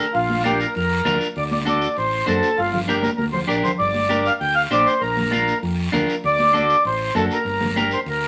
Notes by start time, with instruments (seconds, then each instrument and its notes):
Already playing: accordion A#4
0.14 fingered electric bass A#1, accordion F4, long guiro
0.30 high conga
0.44 clean electric guitar D4 F4 A#4, accordion G4, high conga, short guiro
0.60 accordion A#4, short guiro
0.75 fingered electric bass F2, accordion A#4, long guiro
1.05 fingered electric bass D2, clean electric guitar D4 F4 A#4, high conga, low conga, short guiro
1.21 short guiro
1.36 fingered electric bass D2, accordion D5, long guiro
1.51 accordion D5, high conga
1.65 clean electric guitar D4 F#4 A4, accordion D5, high conga, short guiro
1.81 short guiro
1.97 fingered electric bass A1, accordion C5, long guiro
2.26 fingered electric bass F#2, clean electric guitar D4 F#4 C5, accordion A4, high conga, short guiro
2.43 short guiro
2.58 fingered electric bass G1, accordion F4, long guiro
2.72 accordion F4, low conga
2.88 clean electric guitar D4 G4 A#4, accordion G4, high conga, short guiro
3.03 accordion A#4, high conga, short guiro
3.18 fingered electric bass D2, accordion A#4, high conga, long guiro
3.33 accordion C5, low conga
3.47 fingered electric bass A#1, clean electric guitar D4 G4 A#4, accordion D5, short guiro
3.64 accordion C5, low conga, short guiro
3.79 fingered electric bass G1, accordion D5, long guiro
3.94 high conga
4.09 clean electric guitar D4 G4 A#4, high conga, short guiro
4.26 accordion F5, short guiro
4.40 fingered electric bass D2, accordion G5, long guiro
4.55 accordion F5
4.71 fingered electric bass A#1, clean electric guitar D4 G4 C5, accordion D5, high conga, short guiro
4.86 accordion C5, short guiro
5.01 fingered electric bass A#1, accordion A#4, long guiro
5.17 high conga, low conga
5.31 clean electric guitar D4 F4 A#4, high conga, short guiro
5.48 short guiro
5.63 fingered electric bass F2, long guiro
5.92 fingered electric bass D2, clean electric guitar D4 F4 A#4, high conga, low conga, short guiro
6.09 short guiro
6.24 fingered electric bass D2, accordion D5, long guiro
6.39 high conga
6.53 clean electric guitar D4 F#4 A4, accordion D5, high conga, short guiro
6.70 short guiro
6.85 fingered electric bass A1, accordion C5, long guiro
7.15 fingered electric bass F#2, clean electric guitar D4 F#4 A4, accordion A4, high conga, short guiro
7.31 accordion A#4, short guiro
7.45 fingered electric bass G1, long guiro
7.61 high conga, low conga
7.76 clean electric guitar D4 G4 A#4, accordion A#4, high conga, short guiro
7.91 accordion C5, short guiro
8.06 fingered electric bass D2, accordion A#4, long guiro